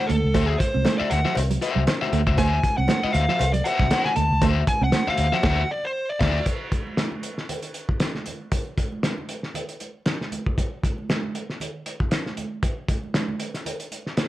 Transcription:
0.07 fingered electric bass D2, clean electric guitar A3, lead electric guitar A4, closed hi-hat, muted conga, high conga, low conga
0.24 fingered electric bass C#2
0.34 fingered electric bass D2, clean electric guitar A3, overdriven electric guitar F#4 C5 E5, kick, closed hi-hat, cowbell, muted conga
0.47 lead electric guitar G#4
0.58 lead electric guitar C5, muted clean electric guitar stroke, kick, closed hi-hat, high conga
0.74 fingered electric bass C2, clean electric guitar C4, high conga
0.85 clean electric guitar A3, snare, closed hi-hat, cowbell, muted conga, high conga
0.98 overdriven electric guitar F#4 C5 E5, lead electric guitar D5, muted fingered electric bass stroke, high conga
1.10 fingered electric bass D2, lead electric guitar F#5, muted clean electric guitar stroke, closed hi-hat, muted conga
1.25 clean electric guitar F3, overdriven electric guitar F#4 C5 E5, snare
1.35 fingered electric bass C2, closed hi-hat, cowbell, low conga
1.51 clean electric guitar F#3, closed hi-hat
1.62 overdriven electric guitar F#4 C5 E5, muted clean electric guitar stroke, closed hi-hat, muted conga
1.75 fingered electric bass C2, clean electric guitar F#3
1.87 snare, closed hi-hat, cowbell
2.02 overdriven electric guitar F#4 C5 E5, snare, high conga
2.13 fingered electric bass D2, clean electric guitar A3, closed hi-hat, muted conga, high conga, low conga
2.27 fingered electric bass C#2, overdriven electric guitar F#4 C5 E5, kick
2.38 fingered electric bass D2, clean electric guitar A3, overdriven electric guitar F#4 C5 E5, lead electric guitar G#5, kick, closed hi-hat, cowbell
2.63 muted clean electric guitar stroke, kick, closed hi-hat, muted conga, high conga
2.77 fingered electric bass C2, clean electric guitar C4, lead electric guitar F#5, high conga
2.88 clean electric guitar A3, snare, closed hi-hat, cowbell, high conga
3.02 overdriven electric guitar F#4 C5 E5, muted fingered electric bass stroke, high conga
3.12 fingered electric bass D2, lead electric guitar F5, muted clean electric guitar stroke, closed hi-hat, muted conga
3.29 clean electric guitar F3, overdriven electric guitar F#4 C5 E5, snare
3.39 fingered electric bass C2, closed hi-hat, cowbell, low conga
3.53 clean electric guitar F#3, lead electric guitar D5, closed hi-hat
3.64 overdriven electric guitar F#4 C5 E5, lead electric guitar F#5, muted clean electric guitar stroke, closed hi-hat
3.79 fingered electric bass C2, clean electric guitar F#3, kick, snare
3.90 overdriven electric guitar F#4 C5 F#5, snare, closed hi-hat, cowbell, muted conga
4.05 lead electric guitar G#5, snare, high conga
4.16 fingered electric bass D2, clean electric guitar A3, lead electric guitar A5, closed hi-hat, muted conga, high conga, low conga
4.31 fingered electric bass C#2
4.42 fingered electric bass D2, clean electric guitar A3, overdriven electric guitar F#4 C5 E5, kick, closed hi-hat, cowbell, muted conga
4.67 lead electric guitar G#5, muted clean electric guitar stroke, kick, closed hi-hat, muted conga, high conga
4.81 fingered electric bass C2, clean electric guitar C4, lead electric guitar F#5, high conga
4.92 clean electric guitar A3, snare, closed hi-hat, cowbell, muted conga, high conga
5.07 overdriven electric guitar F#4 C5 E5, lead electric guitar F5, muted fingered electric bass stroke, high conga, low conga
5.18 fingered electric bass D2, muted clean electric guitar stroke, closed hi-hat
5.32 clean electric guitar F3, overdriven electric guitar F#4 C5 E5, lead electric guitar F#5, snare
5.43 fingered electric bass D2, overdriven electric guitar F#4 C5 E5, kick, snare, crash
5.71 lead electric guitar D5
5.85 lead electric guitar C5
6.09 lead electric guitar D5
6.20 fingered electric bass D2, overdriven electric guitar F#4 C5 E5, kick, snare, crash
6.46 kick, closed hi-hat
6.72 kick, closed hi-hat, muted conga, high conga
6.87 high conga
6.97 snare, closed hi-hat, muted conga, high conga
7.12 high conga
7.23 closed hi-hat, muted conga
7.38 snare
7.49 closed hi-hat, muted conga, low conga
7.62 closed hi-hat
7.74 closed hi-hat
7.89 kick
8.00 snare, closed hi-hat
8.15 snare, high conga
8.26 closed hi-hat, high conga, low conga
8.52 kick, closed hi-hat
8.78 kick, closed hi-hat, high conga
8.92 high conga
9.03 snare, closed hi-hat, muted conga, high conga
9.18 high conga
9.29 closed hi-hat
9.43 snare
9.54 closed hi-hat, muted conga, low conga
9.69 closed hi-hat
9.80 closed hi-hat, muted conga
10.06 snare, closed hi-hat, muted conga
10.21 snare, high conga
10.32 closed hi-hat, muted conga, high conga, low conga
10.46 kick
10.58 kick, closed hi-hat, muted conga
10.84 kick, closed hi-hat, muted conga, high conga
10.98 high conga
11.09 snare, closed hi-hat, muted conga, high conga
11.23 high conga
11.35 closed hi-hat, muted conga
11.50 snare
11.60 closed hi-hat, muted conga, low conga
11.86 closed hi-hat, muted conga
12.00 kick
12.11 snare, closed hi-hat
12.26 snare, high conga
12.37 closed hi-hat, muted conga, high conga, low conga
12.63 kick, closed hi-hat
12.88 kick, closed hi-hat, muted conga, high conga
13.04 high conga
13.14 snare, closed hi-hat, muted conga, high conga
13.28 high conga, low conga
13.40 closed hi-hat, muted conga
13.54 snare, closed hi-hat
13.66 closed hi-hat, muted conga, low conga
13.80 closed hi-hat
13.92 closed hi-hat, muted conga
14.06 snare
14.17 snare, closed hi-hat, muted conga

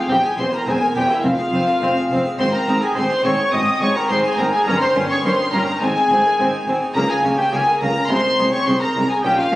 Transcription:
Already playing: violin section F5
0.09 double bass section E1, harpsichord E2, cello section E2, viola section C4, trumpet G4, violin section G5
0.23 harpsichord G4, trumpet G#4, violin section G#5
0.38 double bass section E1, harpsichord E2 C5, cello section E2, viola section C4, trumpet C5, violin section C6
0.52 harpsichord A#4, trumpet A#4, violin section A#5
0.66 double bass section E1, harpsichord E2 C5, cello section E2, viola section C4, trumpet G#4, violin section G#5
0.81 harpsichord A#4
0.95 double bass section E1, harpsichord E2 G4, cello section E2, viola section C4, trumpet G4, violin section G5
1.09 trumpet E4, harpsichord A#4, violin section E5
1.24 double bass section F1, cello section F2, harpsichord F2, viola section C4, trumpet F4, violin section F5
1.38 harpsichord G#4
1.53 double bass section F1, cello section F2, harpsichord F2 C5, viola section C4
1.67 harpsichord A#4
1.82 double bass section F1, cello section F2, harpsichord F2 C5, viola section C4
1.97 harpsichord G#4
2.11 double bass section F1, cello section F2, harpsichord F2 C4, viola section C4
2.25 harpsichord G#4
2.39 double bass section G#1, cello section G#2, harpsichord G#2, viola section C4, trumpet C5, violin section C6
2.52 harpsichord C4, trumpet A#4, violin section A#5
2.67 double bass section G#1, harpsichord G#2 G#4, cello section G#2, viola section C4
2.82 harpsichord G4, trumpet G#4, violin section G#5
2.95 double bass section G#1, harpsichord G#2 G#4, cello section G#2, viola section C4, trumpet C5, violin section C6
3.09 harpsichord D#4
3.23 double bass section G#1, harpsichord G#2 C4, cello section G#2, viola section C4, trumpet C#5, violin section C#6
3.37 harpsichord D#4
3.52 double bass section G#1, harpsichord G#2, cello section G#2, viola section C4, trumpet D#5, violin section D#6
3.66 harpsichord C4
3.81 double bass section G#1, harpsichord G#2 G#4, cello section G#2, viola section C4, trumpet C#5, violin section C#6
3.95 harpsichord G4, trumpet A#4, violin section A#5
4.09 double bass section G#1, harpsichord G#2 G#4, cello section G#2, viola section C4, trumpet C5, violin section C6
4.24 harpsichord D#4, trumpet G#4, violin section G#5
4.36 double bass section G#1, harpsichord G#2 C4, cello section G#2, viola section C4, violin section A#5
4.40 trumpet A#4
4.49 harpsichord D#4, violin section G#5
4.54 trumpet G#4, violin section G#5
4.64 double bass section G1, viola section C#4, trumpet A#4, violin section A#5
4.68 harpsichord G2, cello section G2
4.79 harpsichord C#4, trumpet C5, violin section C6
4.95 double bass section G1, harpsichord G2 A#4, cello section G2, viola section C#4
5.09 harpsichord G#4, trumpet C#5, violin section C#6
5.23 double bass section G1, cello section G2, harpsichord G2 A#4, viola section C#4, trumpet C5, violin section C6
5.40 harpsichord D#4
5.52 double bass section G1, harpsichord G2 C#4, cello section G2, viola section C#4, trumpet A#4, violin section A#5
5.68 harpsichord D#4
5.81 double bass section G#1, harpsichord G#2, cello section G#2, viola section C4, trumpet G#4, violin section G#5
5.96 harpsichord C4
6.09 double bass section G#1, cello section G#2, harpsichord G#2 C5, viola section C4
6.25 harpsichord A#4
6.38 double bass section G#1, cello section G#2, harpsichord G#2 C5, viola section C4
6.53 harpsichord D#4
6.67 double bass section G#1, cello section G#2, harpsichord G#2 C4, viola section C4
6.82 harpsichord D#4
6.93 double bass section C#2, cello section C#3, harpsichord C#3, viola section A#3, trumpet A#4, violin section A#5
7.08 harpsichord F4, trumpet G#4, violin section G#5
7.24 double bass section C#2, harpsichord C#3 C#5, cello section C#3, viola section A#3
7.37 trumpet G4, harpsichord C5, violin section G5
7.51 double bass section C#2, cello section C#3, harpsichord C#3 C#5, viola section A#3, trumpet G#4, violin section G#5
7.68 harpsichord A#4
7.79 double bass section C#2, cello section C#3, harpsichord C#3 F4, viola section A#3, trumpet A#4, violin section A#5
7.96 harpsichord A#4
8.08 double bass section C2, cello section C3, harpsichord C3, viola section G#3, trumpet C5, violin section C6
8.24 harpsichord D#4
8.38 double bass section C2, cello section C3, harpsichord C3 G#4, viola section G#3
8.51 harpsichord G4, trumpet C#5, violin section C#6
8.65 double bass section C2, cello section C3, harpsichord C3 G#4, viola section G#3, trumpet C5, violin section C6
8.79 harpsichord D#4, trumpet A#4, violin section A#5
8.95 double bass section C2, cello section C3, harpsichord C3 G#3, viola section G#3
9.08 trumpet G#4, harpsichord G#4, violin section G#5
9.21 double bass section A#1, cello section A#2, harpsichord A#2, viola section C#4, trumpet G4, violin section G5
9.37 harpsichord C#4, trumpet F4, violin section F5
9.52 double bass section A#1, viola section C#4

